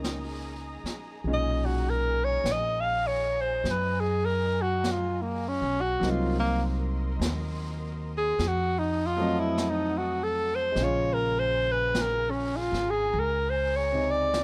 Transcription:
Already playing: C#2 G#3 A#3 C#4 D#4 E4 G#4 D#5 A#5 D#6
0.04 brush sweep, snare, hi-hat pedal
0.83 muted upright bass stroke, snare
1.24 B1 A#2 G#3 C#4 D#5 G#5, brush sweep
1.28 D#4
1.34 D#5
1.66 F#4
1.90 A#4
2.25 C#5
2.44 A#1, brush sweep, snare, hi-hat pedal
2.52 D#5
2.81 F5
3.07 C#5
3.41 C5
3.64 F#2, brush sweep, snare
3.71 B4
4.00 G#4
4.26 A#4
4.62 F#4
4.84 brush sweep, snare, hi-hat pedal
4.91 F4
5.22 A#3
5.48 C#4
5.61 B1
5.81 F#4
6.00 C2 F#3 A#3 C4 A#4 D#5 C6, brush sweep, snare
6.05 D#4
6.10 F4
6.40 A#3
7.20 D#2, brush sweep, snare, hi-hat pedal
8.18 G#4
8.39 F2 A4 F#5 D#6, brush sweep, snare
8.48 F#4
8.79 D#4
9.06 F4
9.17 F#3 A3 C4
9.22 D#5
9.39 E4
9.58 brush sweep, snare, hi-hat pedal
9.70 D#4
9.98 F#4
10.23 A4
10.55 C5
10.72 A#1 G#3
10.76 C#3 G#4 G#5 A#5, brush sweep, snare
10.82 F4 C#5
11.14 A#4
11.39 C5
11.72 B4
11.95 brush sweep, snare, hi-hat pedal
12.02 A#4
12.30 C#4
12.57 F4
12.72 G#1, snare
12.90 G#4
13.14 C#2, brush sweep
13.20 A#4
13.50 C5
13.76 C#5
13.92 C3 D#4
14.11 D5
14.34 brush sweep, snare, hi-hat pedal

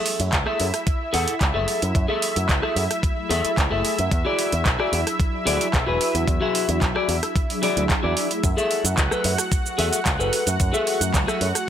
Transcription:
Already playing: E4 G#4 A4 E5
0.06 open hi-hat
0.18 F#2 F#3 A3 E4 G#5, closed hi-hat
0.33 C#2, kick, clap, closed hi-hat
0.46 G#4 A4 E5, cross-stick
0.60 F#2, open hi-hat
0.74 cross-stick, closed hi-hat
0.86 muted clean electric guitar stroke, kick, closed hi-hat
1.13 E2 G#4 A4 F#5, open hi-hat
1.28 closed hi-hat
1.41 C#2, kick, clap, closed hi-hat
1.54 F#1 F#3 A3 E4 G#4 A4 E5
1.68 open hi-hat
1.82 F#2 F#3 A3 E4 F#4, closed hi-hat
1.95 F#2, kick, closed hi-hat
2.08 G#4 A4 E5
2.22 open hi-hat
2.34 F#2 F#3 A3 E4 F#4, closed hi-hat
2.49 C#2, kick, clap, closed hi-hat
2.62 G#4 A4 E5, cross-stick
2.76 F#2, open hi-hat
2.91 cross-stick, closed hi-hat
3.02 muted clean electric guitar stroke, kick, closed hi-hat
3.17 F#3 A3 E4 G#4
3.29 E2 G#4 A4 E5, open hi-hat
3.44 F#3 A3 E4 G#4, muted picked electric bass stroke, closed hi-hat
3.57 C#2, kick, clap, closed hi-hat
3.71 F#1 F#3 A3 E4 G#4 A4 E5 G#5
3.85 open hi-hat
3.99 F#2, closed hi-hat
4.11 E2, kick, closed hi-hat
4.25 F#4 G#4 D5
4.39 open hi-hat
4.52 E2 F#3 D4 E4 G#4, closed hi-hat
4.66 B1, kick, clap, closed hi-hat
4.79 F#4 G#4 D5, cross-stick
4.93 E2, open hi-hat
5.07 cross-stick, closed hi-hat
5.19 muted clean electric guitar stroke, kick, closed hi-hat
5.45 D2 F#4 G#4 D5, open hi-hat
5.61 closed hi-hat
5.74 B1, kick, clap, closed hi-hat
5.86 E1 F#3 D4 E4 F#4 G#4 B4
6.01 open hi-hat
6.15 E2 F#3 D4 E4 F#4, closed hi-hat
6.28 E2, kick, closed hi-hat
6.41 F#4 G#4 E5
6.55 open hi-hat
6.67 E2 F#3 D4 E4 F#4, closed hi-hat
6.82 B1, kick, clap, closed hi-hat
6.95 F#4 G#4 D5, cross-stick
7.08 E2, open hi-hat
7.23 cross-stick, closed hi-hat
7.35 muted clean electric guitar stroke, kick, closed hi-hat
7.50 F#3 D4 E4 G#4, open hi-hat
7.62 F#4 G#4 D5, open hi-hat
7.76 D2 F#3 D4 E4 G#4, closed hi-hat
7.90 kick, clap, closed hi-hat
8.03 E2 F#4 G#4 D5
8.16 F#3 D4 E4 F#4, open hi-hat
8.31 F#3 A3 E4 G#4, closed hi-hat
8.43 F#2 F#4 F#5, kick, closed hi-hat, shaker
8.57 G#4 A4 E5, shaker
8.71 open hi-hat
8.84 F#2 F#3 A3 E4 G#5, closed hi-hat, shaker
8.98 C#2, kick, clap, closed hi-hat, shaker
9.11 G#4 A4 B4, cross-stick, shaker
9.24 F#2, open hi-hat
9.38 cross-stick, closed hi-hat, shaker
9.51 muted clean electric guitar stroke, kick, closed hi-hat, shaker
9.66 shaker
9.78 E2 G#4 A4 E5, open hi-hat
9.93 closed hi-hat, shaker
10.06 C#2, kick, clap, closed hi-hat, shaker
10.19 F#1 F#3 A3 E4 G#4 A4 B4, shaker
10.33 open hi-hat
10.46 F#2 F#3 A3 E4 F#4, closed hi-hat, shaker
10.60 F#2, kick, closed hi-hat, shaker
10.73 G#4 A4 E5, shaker
10.87 open hi-hat
10.99 F#2 F#3 A3 E4 F#4, closed hi-hat, shaker
11.14 C#2, kick, clap, closed hi-hat, shaker
11.27 G#4 A4 E5, cross-stick, shaker
11.41 F#2, open hi-hat
11.55 cross-stick, closed hi-hat, shaker

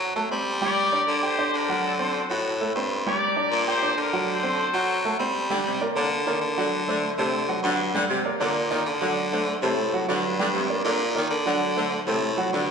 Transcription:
Already playing: F#3 F#4 A4 F#5 F#6
0.15 F#3 A3 A4 A5
0.31 G3 C4 C5 C6
0.61 G3 G4 A#4 D5 G5
0.92 D4 D5 D6
1.07 D3
1.23 G4 C5 G5 G6
1.38 D4 D5 D6
1.53 D3 D4 G4 A#4
1.69 F#3 F#4 F#5
1.86 C4 F#4 A4
1.99 C4 F#4 A4 C5 C6
2.29 A2 F#4 F#5 F#6
2.61 A3 A4 A5
2.75 G2 C4 C5 C6
3.06 G3 G4 A#4 D5 G5
3.36 D4 D5 D6
3.51 A#2
3.67 G4 C5 G5 G6
3.83 D4 D5 D6
3.97 D3 D4 G4 A#4
4.13 F#3 F#4 F#5
4.29 F#4 A4 C5
4.43 C4 C5 C6
4.73 F#3 F#4 F#5 F#6
5.05 A3 A4 A5
5.19 G3 C4 C5 C6
5.50 D3 G3 G4 G5
5.66 C3
5.81 A#3 A#4 D5
5.96 D3 A#3 A#4 D5
6.26 D#3 A#3 A#4 D5
6.41 D3
6.57 D3 F#3 F#4 F#5
6.88 D3 A3 A4 C5
7.18 C3 D3 A3 A4 C5
7.48 F#3 F#4 F#5
7.63 G2 D3 F#3 F#4 F#5
7.95 D3 G3 G4 G5
8.10 C3
8.25 A#3 A#4 D5
8.40 A#2 D3 A#3 A#4 D5
8.70 D#3 A#3 A#4 D5
8.85 D3
9.01 D3 F#3 F#4 F#5
9.32 D3 A3 A4 C5
9.62 A2 C3 A3 A4 C5
9.93 F#3 F#4 F#5
10.08 G2 D3 F#3 F#4 F#5
10.39 D3 G3 G4 G5
10.54 C3
10.69 A#3 A#4 D5
10.84 A#2 D3 A#3 A#4 D5
11.15 D#3 A#3 A#4 D5
11.30 D3
11.46 D3 F#3 F#4 F#5
11.76 D3 A3 A4 C5
12.06 A2 C3 A3 A4 C5
12.37 F#3 F#4 F#5
12.52 G2 D3 F#3 F#4 F#5

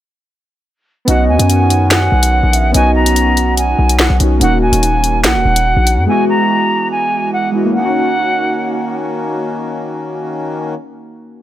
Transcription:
1.05 B1 D#3 B3 C#4 D#4 F#4 D#5 F#5, closed hi-hat
1.10 F#4
1.29 D#2 G#5
1.37 F#2 B3 C#4 D#4, closed hi-hat
1.42 F#4
1.49 F#5, closed hi-hat
1.70 closed hi-hat
1.91 F#5 G#5, finger snap, snare, closed hi-hat
2.12 B1
2.23 closed hi-hat
2.33 F#5
2.43 A#1
2.53 E5, closed hi-hat
2.71 B1 B3 C#4 D#4 D#5 G#5, closed hi-hat
2.77 F#4
2.95 A#5
3.03 B3 C#4 D#4, closed hi-hat
3.08 F#4
3.16 F#5, closed hi-hat
3.37 closed hi-hat
3.57 G#5, closed hi-hat
3.79 B1
3.89 closed hi-hat
3.99 F#5, finger snap, snare
4.10 B1
4.18 B1 B3 C#4 D#4, closed hi-hat
4.23 F#4
4.39 D#1 A#3 C#4 D#4 F#5, closed hi-hat
4.44 F#4
4.62 G#5
4.70 D#1 A#3 C#4 D#4, closed hi-hat
4.75 F#4
4.83 closed hi-hat
5.04 closed hi-hat
5.24 A#1 F#5, finger snap, snare, closed hi-hat
5.35 D#1
5.45 D#1
5.56 closed hi-hat
5.77 A#1
5.87 closed hi-hat
5.97 F#2
6.06 E3 G#3 B3 E4 G#5
6.11 F#4
6.29 A#5
6.37 G#3 B3 E4
6.42 F#4
6.91 G#5
7.33 F#5
7.51 G#3 B3 E4
7.56 F#4
7.64 A#3
7.71 D#3 A#3 C#4 F#4 F#5
7.78 D#4
7.85 F#4

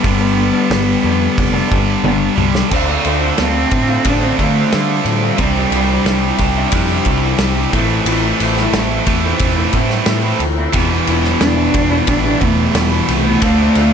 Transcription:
Already playing: B3
0.03 G1 G2 D3 G3 B3 D4, kick, open hi-hat
0.20 D3 G3 B3 D4
0.53 D3 G3 B3 D4
0.71 G1, snare, open hi-hat
1.03 F2 D3 G3 B3 D4
1.38 F1, kick, open hi-hat
1.53 D3 G3 B3 D4
1.68 G1 G2 D3 G3, kick
2.02 G1 G2 D3 G3 B3 D4, high tom
2.36 C2 G2 D3 G3, mid tom
2.55 snare
2.70 D2 D3 A3 C4 F4, kick, crash
2.75 D4
2.89 A3 C4 F4
3.05 D2 D3 A3 C4 F4, ride
3.38 D2 D3 A3 C4 F4, snare, ride
3.56 A3 C4 F4
3.71 A2, muted clean electric guitar stroke, kick, ride
3.88 A3 C4 F4
4.05 A1 D3 A3, kick, ride
4.09 D4
4.22 A3 C4 F4
4.39 D3 A3 C4 F4, kick, ride
4.72 D3 G3 A3 C4 F4, snare, ride
4.89 A3 C4 F4
5.05 A2 G3, ride
5.23 A3 C4 F4
5.37 C2 C3 E3 G3 C4 D4, kick, ride
5.42 E4
5.56 G3 D4 E4
5.72 C2 E3 G3 D4, ride
5.76 E4
6.05 C2 C3 E3 G3 D4 E4, snare, ride
6.24 G3 D4 E4
6.38 C2, muted clean electric guitar stroke, kick, ride
6.57 G3 D4 E4
6.71 F2 C3 G3 C4, kick, ride
6.91 G3 D4 E4
7.05 C2 E3 G3 D4 E4, kick, ride
7.39 C2 C3 E3 G3 D4 E4, snare, ride
7.55 G3 D4 E4
7.72 A1 A2 E3 A3 C4 E4, kick, ride
7.77 A3
7.90 A3 C4 E4
8.05 A1 A2 E3 A3 C4 E4, ride
8.23 A3 C4 E4
8.40 A1 E3 A3 C4 E4, ride
8.57 snare
8.73 A1 A2 E3 A3 C4 E4, snare, ride
8.90 A3 C4 E4
9.06 E2 A2 E3 A3, muted clean electric guitar stroke, kick, ride
9.23 A3 C4 E4
9.39 E1, kick, ride
9.57 A3 C4 E4
9.73 A2 E3 A3 C4 E4, kick, ride
9.90 snare
10.05 A2 E3 A3 C4 E4, snare, ride
10.23 A3 C4 E4
10.40 D2, ride
10.57 A3 C4 E4
10.72 E1 E2 B2 E3 G3 B3 E4, kick, ride
10.77 E3
10.89 G3 B3 E4
11.07 E1 E3 G3 B3 E4, ride
11.24 snare
11.41 E1 E3 G3 B3 D4 E4, snare, ride
11.57 G3 B3 E4
11.73 E1, muted clean electric guitar stroke, kick, ride
11.90 G3 B3 E4
12.07 A1 E2 B2 E3 D4, kick, ride
12.24 G3 B3 E4
12.28 D4
12.39 E1 E3 G3 B3 E4, kick, ride
12.44 A3
12.73 E1 E3 G3 B3 E4, snare, ride
12.91 G3 B3 E4
13.09 C2 A3, ride
13.25 G3 B3 E4
13.41 D2 D3 A3 C4 D4 F4, kick, ride
13.59 A3 C4 F4
13.74 D2 D3 A3 C4 F4, ride

